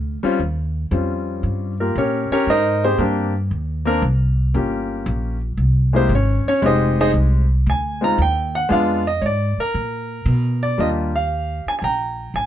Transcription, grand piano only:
0.23 G3 C4 C#4 F4
0.91 G3 C4 C#4 F4
1.80 A#3 F4 G4 A#4
1.98 C#4 G4 A#4 C#5
2.32 C#4 G4 A#4 C#5
2.50 D#4 A#4 C5 D#5
2.84 C4 G4 G#4 C5
2.98 A#3 C4 D4 G4
3.85 A#3 C4 D4 A#4
4.54 A#3 C#4 F4 G4
5.93 G#3 A#3 C4 E4 G4 G#4 C5
6.15 C#4 C#5
6.48 C#4 C#5
6.62 G#3 C4 D#4 G4 D#5
6.66 D#4 G#4 C5
7.01 D#4 G#4 C5 D#5
7.70 G#5
8.01 G#3 C4 D#4 F4 A#5
8.22 G5
8.55 F#5
8.69 G#3 B3 D4 F4 F5
9.07 D#5
9.21 C#5
9.26 D5
9.60 A#4
10.63 D5
10.78 G3 A#3 D4 F4 G4 D#5
11.16 F5
11.68 G#5
11.79 G#5
11.84 G5 A#5
12.36 G#5

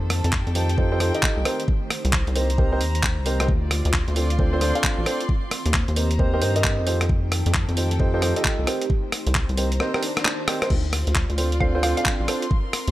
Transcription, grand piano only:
0.55 D#4 F4 G4 A4 C5
0.78 D#4 F4 G4 A4 C5
0.92 D#4 F4 G4 A4 C5
1.00 D#4 F4 G4 A4 C5
1.14 D#4 F4 G4 A4 D#5
1.45 C4 D#4 G4 A#4 C5
2.36 C4 D#4 G4 A#4 C5
2.58 C4 D#4 G4 A#4 C5
2.72 C4 D#4 G4 A#4 C5
3.26 C4 D#4 G4 A#4 C5
3.40 C4 D#4 G4 A#4 C5
4.16 C4 D4 F4 A4 C5
4.39 C4 D4 F4 A4 C5
4.53 C4 D4 F4 A4 C5
4.61 C4 D4 F4 A4 C5
4.75 C4 D4 F4 A4 F5
5.06 C4 D4 F4 A4 C5
5.96 C4 D#4 G4 A#4 C5
6.19 C4 D#4 G4 A#4 C5
6.33 C4 D#4 G4 A#4 C5
6.42 C4 D#4 G4 A#4 C5
6.56 C4 D#4 G4 A#4 D#5
6.87 D#4 F4 G4 A4 C5
7.77 D#4 F4 G4 A4 C5
8.00 D#4 F4 G4 A4 C5
8.14 D#4 F4 G4 A4 C5
8.22 D#4 F4 G4 A4 C5
8.36 D#4 F4 G4 A4 D#5
8.67 C4 D#4 G4 A#4 C5
9.57 C4 D#4 G4 A#4 C5
9.80 C4 D#4 G4 A#4 C5
9.94 C4 D#4 G4 A#4 C5
10.48 C4 D#4 G4 A#4 C5
10.62 C4 D#4 G4 A#4 C5
11.38 C4 D4 F4 A4 C5
11.60 C4 D4 F4 A4 C5
11.75 C4 D4 F4 A4 C5
11.83 C4 D4 F4 A4 C5
11.97 C4 D4 F4 A4 F5
12.28 C4 D4 F4 A4 C5

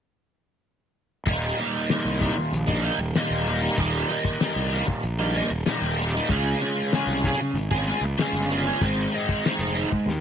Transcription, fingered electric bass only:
1.26 D#1
2.05 C2
2.52 A#1
2.98 D#1
3.30 D#1
3.78 D#1
4.56 C2
5.04 A#1
5.51 D#1
5.82 D#1
6.29 C#2
7.07 C2
7.54 G#1
8.01 C#2
8.33 G1
8.81 G#1
9.59 F1
10.06 D#2

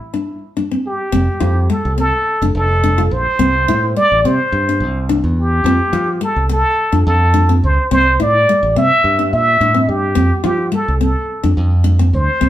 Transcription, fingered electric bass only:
1.13 F1
1.41 F2
1.85 C2
2.42 F1
2.55 F1
3.11 A#1
3.39 C2
3.68 A2
4.12 A1
4.25 C3
4.52 G2
4.80 C2
5.24 E2
5.64 F2
5.93 F3
6.36 C2
6.93 F2
7.07 F2
7.64 C#2
7.92 C2
8.20 A2
8.63 A1
8.76 C3
9.04 G2
9.33 A#2
9.61 A2
9.89 G2
10.16 F2
10.44 F3
10.88 C2
11.44 F2
11.57 F2
12.13 D2
12.42 C2

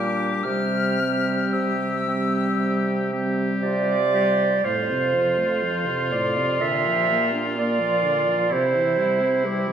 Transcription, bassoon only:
Already playing: A#2
0.45 C3
1.53 C3
2.59 C3
3.62 C3
4.65 F2
6.59 A#2
8.52 C3

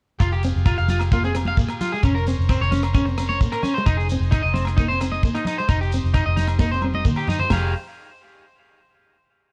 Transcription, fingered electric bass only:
0.20 F1
0.56 F1
0.79 F1
2.04 F1
2.38 F1
2.61 F1
3.86 F1
4.20 F1
4.44 F1
5.69 F1
6.04 F1
6.26 F1
7.51 F1

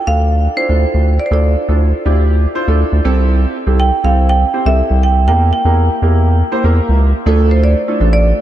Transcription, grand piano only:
0.07 D4 F4 A4
0.56 D4 E4 F4 A4
0.69 D4 E4 F4 A4
1.31 D4 E4 F4 A4
1.68 D4 E4 F4 A4
2.06 D4 E4 F4 G4
2.55 D4 E4 F4 C5
2.68 D4 E4 F4 A4
3.05 C4 E4 G4 A4
3.67 C4 E4 G4 A4
4.04 C4 E4 G4 A4
4.53 C4 E4 G4 C5
4.66 C4 E4 G4 A4
5.28 A#3 E4 G4 A#4
5.65 A#3 E4 G4 A#4
6.02 A#3 E4 G4 A#4
6.52 A#3 E4 G4 C5
6.64 A#3 E4 G4 A#4
7.26 A3 D4 E4 F4 A4
7.88 A3 D4 E4 F4 A4
8.00 A3 D4 F4 A4

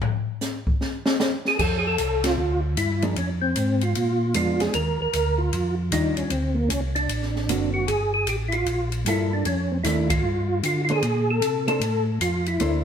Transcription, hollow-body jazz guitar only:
3.03 F3 A#3 D#4 G#4
4.35 G#3 B3 D4
5.92 D#3 G3 D4 F4
7.49 D3 A#3 C4 F#4
9.07 G3 A#3 F4 A4
9.85 D#3 A3 D4
10.90 A#3 D4 A4 C5
11.68 A#3 D4 A4 C5
12.60 A#3 D4 A4 C5

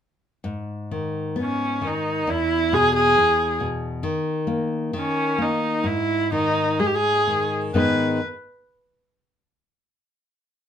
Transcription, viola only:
1.41 C#4
1.87 D#4
2.30 E4
2.73 G#4
2.96 G#4
4.99 C#4
5.42 D#4
5.87 E4
6.35 D#4
6.79 G#4
6.86 G4
6.95 G#4
7.75 B4

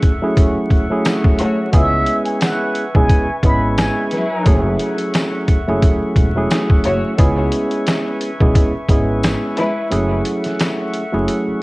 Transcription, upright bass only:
1.74 C#2
2.95 B1
3.30 muted upright bass stroke
3.43 G#1
4.46 F#1
5.68 F#1
6.02 muted upright bass stroke
6.16 E1
6.85 F#1
7.19 C#2
8.41 B1
8.75 muted upright bass stroke
8.89 G#1
9.92 F#1
11.14 F#1
11.48 muted upright bass stroke

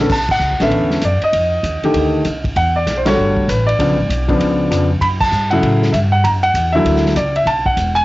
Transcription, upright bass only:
0.10 B1
0.40 C#2
0.50 B1
0.60 A1
0.71 E2
1.02 F#2
1.22 muted upright bass stroke
1.33 F2
1.63 D#2
1.83 muted upright bass stroke
1.94 D2
2.25 C2
2.56 E2
2.87 B1
3.16 G1
3.48 A1
3.79 C#2
3.88 B1
3.98 G#1
4.09 B1
4.40 C#2
4.71 F2
5.01 F#2
5.32 G2
5.62 A2
5.93 G2
6.24 F#2
6.54 E2
6.85 D2
7.16 C#2
7.46 B1
7.77 E1

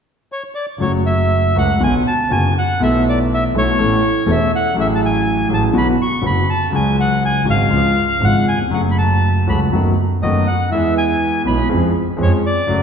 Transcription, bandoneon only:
0.32 C#5
0.55 D5
0.81 C#5
1.06 E5
1.58 F#5
1.84 G#5
2.08 A5
2.32 G#5
2.58 F#5
2.83 E5
3.09 D5
3.34 E5
3.58 C#5
4.31 E5
4.56 F#5
4.80 E5
4.95 A5
5.05 G#5
5.54 A5
5.78 B5
6.02 C#6
6.26 B5
6.50 A5
6.75 G#5
7.00 F#5
7.25 G#5
7.50 F5
8.24 F#5
8.48 G#5
8.74 F#5
8.91 B5
8.98 A5
9.49 B5
10.22 D#5
10.47 F#5
10.72 E5
10.98 G#5
11.47 B5
12.22 C#5
12.46 D5

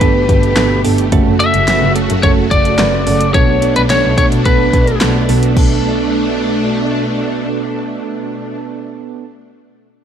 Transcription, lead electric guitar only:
Already playing: B4
1.40 E5
2.23 C#5
2.51 D5
3.34 C#5
3.76 B4
3.90 C#5
4.18 C#5
4.46 B4

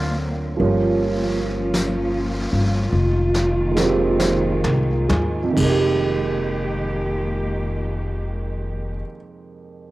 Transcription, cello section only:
Already playing: D3 A#3 C4
0.59 F3 A#3 C#4 F4
2.95 D#3 G#3 A#3
5.56 D#3 G#3 A#3 G4

